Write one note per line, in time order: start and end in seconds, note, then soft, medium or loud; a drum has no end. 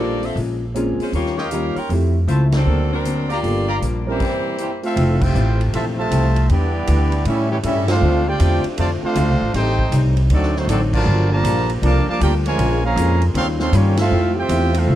0.00 0.32 A#1 medium
0.00 0.20 G3 medium
0.00 0.25 G3 medium
0.00 0.21 A#3 medium
0.00 0.23 A#3 medium
0.00 0.25 A#3 medium
0.00 0.21 D4 medium
0.00 0.21 F4 medium
0.00 0.22 F4 medium
0.00 0.25 F4 medium
0.00 0.22 A4 medium
0.00 0.25 A4 medium
0.00 0.21 C5 medium
0.00 0.23 D5 loud
0.23 0.37 C4 medium
0.23 0.37 F4 medium
0.23 0.37 A4 medium
0.23 0.37 E5 medium
0.23 open hi-hat soft
0.36 0.95 A#1 medium
0.36 0.63 A#2 soft
0.36 0.63 G#3 soft
0.36 0.64 C#4 soft
0.36 0.64 F4 medium
0.36 open hi-hat soft
0.74 1.01 A#2 medium
0.74 1.02 G#3 medium
0.74 1.13 A#3 medium
0.74 1.13 C4 medium
0.74 1.13 C#4 medium
0.74 1.02 C#4 medium
0.74 1.14 F4 medium
0.74 1.02 F4 medium
0.74 1.14 G#4 medium
0.74 closed hi-hat medium
0.99 1.13 G#3 medium
0.99 1.13 C#4 medium
0.99 1.13 F4 medium
0.99 1.13 C5 medium
0.99 muted upright bass stroke soft
0.99 open hi-hat soft
1.12 1.72 D#2 medium
1.12 1.40 D#3 soft
1.12 1.41 G3 medium
1.12 1.37 A#3 medium
1.12 1.41 C#4 medium
1.12 1.37 F4 medium
1.12 1.36 G4 medium
1.12 1.37 C#5 medium
1.12 open hi-hat soft
1.17 1.41 F4 medium
1.26 snare soft
1.37 1.76 C#4 medium
1.37 1.47 F4 medium
1.37 1.76 G4 medium
1.37 1.75 A#4 medium
1.37 1.47 C#5 medium
1.37 1.48 D#5 medium
1.37 1.76 F5 loud
1.37 1.47 G5 loud
1.37 snare soft
1.51 1.78 D#3 medium
1.51 1.79 G3 medium
1.51 1.74 A#3 medium
1.51 1.74 C#4 soft
1.51 1.79 C#4 medium
1.51 1.74 D#4 medium
1.51 1.74 F4 soft
1.51 1.79 F4 medium
1.51 1.74 G4 medium
1.51 closed hi-hat medium
1.76 1.90 F4 medium
1.76 1.90 A#4 medium
1.76 1.90 C#5 medium
1.76 1.90 G5 medium
1.76 muted upright bass stroke soft
1.76 open hi-hat soft
1.89 2.25 F2 medium
1.89 2.16 F3 soft
1.89 2.13 A3 medium
1.89 2.17 A3 soft
1.89 2.13 C4 medium
1.89 2.17 C4 medium
1.89 2.13 E4 medium
1.89 2.18 E4 medium
1.89 2.13 F4 medium
1.89 2.13 G4 medium
1.89 open hi-hat soft
2.27 2.64 C#2 medium
2.27 2.54 F3 medium
2.27 2.55 A3 medium
2.27 2.55 C4 medium
2.27 2.55 E4 medium
2.27 2.45 F4 medium
2.27 2.45 C5 medium
2.27 2.45 E5 medium
2.27 2.45 A5 medium
2.27 closed hi-hat medium
2.52 2.90 F#3 medium
2.52 2.90 C4 medium
2.52 2.90 D4 medium
2.52 2.90 A4 loud
2.52 snare medium
2.52 ride medium
2.66 3.39 D2 medium
2.66 2.92 D3 soft
2.66 3.25 A#3 medium
2.66 2.93 A#3 medium
2.66 3.25 C4 soft
2.66 2.94 C4 medium
2.66 3.25 D4 medium
2.66 3.25 F#4 soft
2.66 2.94 F#4 medium
2.66 3.25 A#4 medium
2.93 3.28 F#3 medium
2.93 3.28 C4 medium
2.93 3.28 D4 medium
2.93 3.28 A#4 loud
3.05 3.31 D3 medium
3.05 3.32 A#3 medium
3.05 3.32 C4 medium
3.05 3.32 F#4 medium
3.05 closed hi-hat medium
3.30 3.83 A#3 medium
3.30 3.82 F4 loud
3.30 3.39 G4 medium
3.30 3.83 G4 medium
3.30 3.39 D5 medium
3.30 3.83 D5 loud
3.30 3.39 F5 medium
3.30 3.39 A#5 loud
3.30 open hi-hat soft
3.43 3.79 G1 medium
3.43 3.69 G2 soft
3.43 3.70 F3 soft
3.43 3.65 G3 medium
3.43 3.66 A#3 medium
3.43 3.70 A#3 medium
3.43 3.66 D4 medium
3.43 3.71 D4 soft
3.43 3.66 F4 medium
3.43 3.66 A4 medium
3.43 open hi-hat soft
3.68 3.77 G4 medium
3.68 3.78 D5 loud
3.68 3.77 F5 medium
3.68 3.78 A#5 loud
3.81 4.17 A#1 medium
3.81 4.08 G2 medium
3.81 4.08 F3 medium
3.81 4.09 A#3 medium
3.81 4.09 D4 medium
3.81 closed hi-hat medium
4.07 4.58 E3 medium
4.07 4.19 G3 medium
4.07 4.58 G3 medium
4.07 4.80 A#3 medium
4.07 4.19 C4 medium
4.07 4.58 C4 medium
4.07 4.19 C#4 medium
4.07 4.19 E4 medium
4.07 4.81 E4 medium
4.07 4.81 G4 medium
4.07 4.19 A#4 medium
4.07 4.81 C5 loud
4.20 kick medium
4.20 open hi-hat soft
4.20 crash medium
4.58 4.70 E3 medium
4.58 4.70 G3 medium
4.58 4.71 A#3 medium
4.58 4.70 C4 medium
4.58 4.71 E4 medium
4.58 4.72 G4 medium
4.58 4.71 C5 medium
4.58 closed hi-hat medium
4.83 5.18 A3 medium
4.83 5.19 C4 medium
4.83 5.20 C4 medium
4.83 5.19 F4 medium
4.83 5.20 A4 medium
4.83 5.20 E5 medium
4.83 5.20 F5 medium
4.83 open hi-hat soft
4.96 5.33 F1 loud
4.96 5.23 F2 soft
4.96 6.49 C3 medium
4.96 5.23 E3 medium
4.96 6.49 F3 medium
4.96 6.49 A3 medium
4.96 5.24 A3 medium
4.96 5.24 C4 medium
4.96 ride medium
5.21 5.60 C4 medium
5.21 5.60 F4 loud
5.21 5.60 F4 medium
5.21 5.60 G4 medium
5.21 5.60 C5 medium
5.21 5.60 E5 medium
5.21 5.60 G5 medium
5.21 kick loud
5.21 crash medium
5.35 5.72 A1 loud
5.35 5.61 F2 medium
5.35 5.61 E3 medium
5.35 5.62 A3 medium
5.35 5.62 C4 medium
5.35 hi-hat pedal medium
5.61 ride medium
5.73 6.10 A#1 medium
5.73 5.99 F2 medium
5.73 5.85 C3 medium
5.73 5.85 E3 medium
5.73 6.00 E3 medium
5.73 5.85 A3 medium
5.73 6.00 A3 medium
5.73 6.01 C4 medium
5.73 5.85 F4 medium
5.73 5.85 C5 medium
5.73 5.85 E5 medium
5.73 5.86 A5 medium
5.73 ride medium
5.98 6.46 C3 loud
5.98 6.46 F3 medium
5.98 6.46 A3 medium
5.98 6.46 F4 medium
5.98 6.47 C5 medium
5.98 6.47 E5 medium
5.98 6.46 A5 loud
6.11 6.48 C2 medium
6.11 6.37 F2 medium
6.11 6.37 E3 medium
6.11 6.38 A3 medium
6.11 6.38 C4 medium
6.11 hi-hat pedal medium
6.11 ride medium
6.36 ride medium
6.49 6.86 E2 medium
6.49 7.25 D3 medium
6.49 6.76 E3 soft
6.49 7.26 G3 medium
6.49 8.01 G3 medium
6.49 7.26 B3 medium
6.49 7.25 B3 medium
6.49 6.76 B3 medium
6.49 7.27 B3 medium
6.49 7.26 D4 medium
6.49 6.77 D4 medium
6.49 7.27 E4 medium
6.49 7.27 G4 medium
6.49 6.77 G4 medium
6.49 7.27 D5 medium
6.49 ride medium
6.87 7.25 D2 loud
6.87 7.13 E3 medium
6.87 7.13 B3 medium
6.87 7.14 D4 medium
6.87 7.14 G4 medium
6.87 hi-hat pedal medium
6.87 ride medium
7.12 ride soft
7.25 7.62 A2 medium
7.25 7.52 A2 medium
7.25 8.02 C#3 medium
7.25 7.52 G3 medium
7.25 7.49 G3 medium
7.25 10.28 A3 medium
7.25 7.49 C#4 medium
7.25 7.52 C#4 medium
7.25 7.50 C#4 medium
7.25 7.50 E4 medium
7.25 7.53 E4 medium
7.25 7.50 G4 medium
7.25 7.50 A4 medium
7.25 7.50 E5 loud
7.25 ride medium
7.51 7.57 E3 medium
7.51 7.57 G3 medium
7.51 7.58 A3 medium
7.51 7.57 C#4 medium
7.51 7.58 E4 medium
7.51 7.58 G4 medium
7.51 7.58 C#5 medium
7.63 8.00 G2 medium
7.63 7.91 A2 medium
7.63 7.87 G3 medium
7.63 7.91 G3 medium
7.63 7.87 C#4 medium
7.63 7.91 C#4 medium
7.63 7.87 E4 medium
7.63 7.91 E4 medium
7.63 7.87 G4 medium
7.63 7.87 A4 medium
7.63 7.87 E5 loud
7.63 hi-hat pedal medium
7.63 ride medium
7.88 8.23 A3 medium
7.88 8.24 C4 medium
7.88 8.25 D4 medium
7.88 8.23 F4 medium
7.88 8.25 A4 medium
7.88 8.25 C5 medium
7.88 8.25 F5 loud
7.88 snare medium
7.88 ride medium
8.00 8.39 D2 loud
8.00 10.28 C3 medium
8.00 8.28 D3 soft
8.00 9.52 F3 medium
8.00 8.29 A3 soft
8.00 8.29 C4 medium
8.00 9.52 D4 medium
8.05 8.29 F4 medium
8.27 8.65 A3 medium
8.27 8.65 C4 loud
8.27 8.65 F4 medium
8.27 8.65 G4 loud
8.27 8.65 C5 medium
8.27 8.65 D5 medium
8.27 8.65 G5 loud
8.40 8.63 E2 loud
8.40 8.66 D3 medium
8.40 8.66 A3 medium
8.40 8.66 C4 medium
8.40 8.67 F4 medium
8.40 hi-hat pedal medium
8.40 ride medium
8.64 muted upright bass stroke soft
8.64 ride medium
8.77 9.01 F2 medium
8.77 8.89 C3 medium
8.77 9.04 D3 medium
8.77 8.89 F3 medium
8.77 8.89 A3 medium
8.77 9.05 A3 soft
8.77 9.05 C4 medium
8.77 8.90 F4 medium
8.77 9.05 F4 medium
8.77 8.90 C5 medium
8.77 8.90 D5 medium
8.77 8.90 A5 loud
8.77 ride medium
9.02 9.51 A3 medium
9.02 9.51 C4 medium
9.02 9.52 D4 medium
9.02 9.50 F4 medium
9.02 9.52 A4 medium
9.02 9.52 C5 medium
9.02 9.52 F5 loud
9.02 muted upright bass stroke soft
9.15 9.28 D2 loud
9.15 9.42 D3 medium
9.15 9.42 A3 medium
9.15 9.42 C4 medium
9.15 9.43 F4 medium
9.15 hi-hat pedal medium
9.15 ride medium
9.28 9.41 C2 medium
9.41 9.53 A1 medium
9.54 9.91 A1 medium
9.54 9.80 A2 medium
9.54 9.80 G3 medium
9.54 10.30 G3 medium
9.54 10.04 C4 medium
9.54 9.81 C4 medium
9.54 10.03 D#4 medium
9.54 10.29 D#4 medium
9.54 10.04 D#4 loud
9.54 9.81 D#4 medium
9.54 10.03 G4 medium
9.54 10.04 A4 medium
9.54 10.04 C5 loud
9.54 10.04 G5 loud
9.54 snare soft
9.54 ride medium
9.79 kick medium
9.92 10.29 C2 loud
9.92 10.19 A2 medium
9.92 10.19 G3 medium
9.92 10.19 C4 medium
9.92 10.19 D#4 medium
9.92 hi-hat pedal medium
9.92 ride medium
10.17 ride medium
10.30 10.67 D2 medium
10.30 11.06 D3 medium
10.30 10.57 D3 soft
10.30 11.06 F#3 medium
10.30 10.54 F#3 medium
10.30 10.57 F#3 medium
10.30 10.54 A3 medium
10.30 11.06 C4 medium
10.30 10.54 C4 medium
10.30 10.58 C4 medium
10.30 10.54 D4 medium
10.30 11.06 D#4 medium
10.30 10.58 D#4 medium
10.30 10.54 F#4 medium
10.30 10.54 A4 medium
10.30 10.55 D5 medium
10.30 ride medium
10.43 snare soft
10.56 10.69 F#3 medium
10.56 10.69 A3 medium
10.56 10.70 A3 medium
10.56 10.69 C4 medium
10.56 10.70 D#4 medium
10.56 10.69 F#4 medium
10.56 10.70 C5 loud
10.56 snare soft
10.67 11.05 A1 medium
10.67 10.95 D3 medium
10.67 10.95 F#3 medium
10.67 10.81 F#3 medium
10.67 10.81 A3 medium
10.67 10.95 C4 medium
10.67 10.81 C4 medium
10.67 10.81 D4 medium
10.67 10.95 D#4 medium
10.67 10.81 F#4 medium
10.67 10.81 A4 medium
10.67 10.81 D5 medium
10.67 hi-hat pedal medium
10.67 ride medium
10.93 11.29 D3 medium
10.93 11.29 F3 medium
10.93 11.30 F#3 loud
10.93 11.29 F4 medium
10.93 11.29 A#4 loud
10.93 11.29 D5 loud
10.93 11.29 A5 loud
10.93 kick medium
10.93 crash medium
11.06 11.43 G1 loud
11.06 12.57 F3 medium
11.06 12.57 G3 medium
11.06 11.33 G3 soft
11.06 12.58 A#3 medium
11.06 11.33 A#3 medium
11.06 11.33 F4 medium
11.06 12.57 G4 medium
11.06 11.34 A4 soft
11.32 11.70 D3 loud
11.32 11.70 F3 loud
11.32 11.70 A#3 loud
11.32 11.70 F4 medium
11.32 11.70 D5 loud
11.32 11.70 A5 medium
11.32 11.70 A#5 loud
11.44 11.81 A#1 loud
11.44 11.70 G3 medium
11.44 11.71 A#3 medium
11.44 11.71 F4 medium
11.44 11.72 A4 medium
11.44 hi-hat pedal medium
11.44 ride medium
11.70 ride medium
11.82 12.05 C2 medium
11.82 12.06 F3 medium
11.82 12.08 G3 medium
11.82 12.09 A#3 medium
11.82 12.06 A#3 loud
11.82 12.06 D4 loud
11.82 12.09 F4 medium
11.82 12.10 A4 medium
11.82 12.07 A#4 medium
11.82 12.07 F5 loud
11.82 12.07 A5 medium
11.82 12.07 D6 loud
11.82 ride medium
12.07 12.21 F3 loud
12.07 12.21 A#3 medium
12.07 12.21 D4 medium
12.07 12.21 A#4 medium
12.07 12.21 F5 medium
12.07 12.21 A5 loud
12.07 12.21 D6 loud
12.07 muted upright bass stroke soft
12.20 12.57 D2 loud
12.20 12.46 G3 medium
12.20 12.47 A#3 medium
12.20 12.34 A#3 loud
12.20 12.34 D4 medium
12.20 12.47 F4 medium
12.20 12.33 F4 medium
12.20 12.34 G4 medium
12.20 12.47 A4 medium
12.20 12.33 A#4 medium
12.20 12.34 D5 medium
12.20 12.33 G5 loud
12.20 hi-hat pedal medium
12.20 ride medium
12.46 12.81 C#3 medium
12.46 12.81 F3 loud
12.46 12.81 G#3 medium
12.46 12.82 F4 medium
12.46 12.82 A#4 loud
12.46 12.82 C#5 medium
12.46 12.82 G#5 loud
12.46 ride medium
12.58 12.95 A#1 medium
12.58 12.84 A#2 medium
12.58 13.94 C#3 medium
12.58 12.85 G#3 medium
12.58 13.35 G#3 medium
12.58 13.35 A#3 medium
12.58 12.85 C#4 medium
12.58 13.35 F4 medium
12.58 12.86 F4 medium
12.58 ride medium
12.84 13.22 C#3 loud
12.84 13.22 F3 loud
12.84 13.22 A#3 loud
12.84 13.23 G#4 medium
12.84 13.23 C#5 loud
12.84 13.23 F5 loud
12.84 13.23 A#5 loud
12.96 13.33 F2 loud
12.96 13.23 A#2 medium
12.96 13.23 G#3 medium
12.96 13.24 C#4 medium
12.96 13.24 F4 medium
12.96 hi-hat pedal medium
12.96 ride medium
13.22 ride medium
13.34 13.72 D#2 loud
13.34 13.61 D#3 medium
13.34 13.94 F3 medium
13.34 13.62 G3 medium
13.34 13.94 G3 medium
13.34 13.47 C4 loud
13.34 13.62 C#4 medium
13.34 13.94 D#4 medium
13.34 13.62 F4 medium
13.34 13.48 A4 medium
13.34 13.48 C#5 loud
13.34 13.48 F5 loud
13.34 13.48 C6 loud
13.34 ride medium
13.60 13.73 C4 loud
13.60 13.74 A4 medium
13.60 13.73 C#5 medium
13.60 13.74 F5 medium
13.60 13.74 C6 loud
13.60 snare medium
13.72 14.10 G2 loud
13.72 13.99 D#3 medium
13.72 13.99 G3 medium
13.72 13.98 G3 medium
13.72 13.98 A#3 medium
13.72 13.99 A#3 medium
13.72 13.98 C#4 medium
13.72 14.00 C#4 medium
13.72 14.00 F4 medium
13.72 13.99 F4 medium
13.72 13.99 G4 medium
13.72 13.99 C#5 medium
13.72 hi-hat pedal medium
13.72 ride medium
13.97 14.34 A3 medium
13.97 14.33 C4 loud
13.97 14.35 C4 medium
13.97 14.34 F4 loud
13.97 14.35 A4 loud
13.97 14.35 E5 medium
13.97 14.35 F5 loud
13.97 snare medium
13.97 ride medium
14.11 14.48 F2 medium
14.11 14.95 C3 medium
14.11 14.37 F3 medium
14.11 14.37 A3 medium
14.11 14.95 A3 medium
14.11 14.95 C4 medium
14.11 14.38 C4 medium
14.11 14.38 E4 medium
14.11 14.95 F4 medium
14.37 14.73 C4 loud
14.37 14.74 F4 loud
14.37 14.76 F4 medium
14.37 14.75 G4 loud
14.37 14.76 C5 medium
14.37 14.76 E5 loud
14.37 14.76 G5 loud
14.49 14.86 E2 loud
14.49 14.76 F3 medium
14.49 14.76 A3 medium
14.49 14.76 C4 medium
14.49 14.76 E4 medium
14.49 hi-hat pedal medium
14.49 ride medium
14.74 14.95 A3 medium
14.74 14.95 C4 medium
14.74 14.95 F4 medium
14.74 14.95 A4 medium
14.74 14.95 E5 medium
14.74 14.95 F5 loud
14.74 ride medium
14.87 14.95 C2 loud
14.87 14.95 F3 medium
14.87 14.95 A3 medium
14.87 14.95 C4 medium
14.87 14.95 E4 medium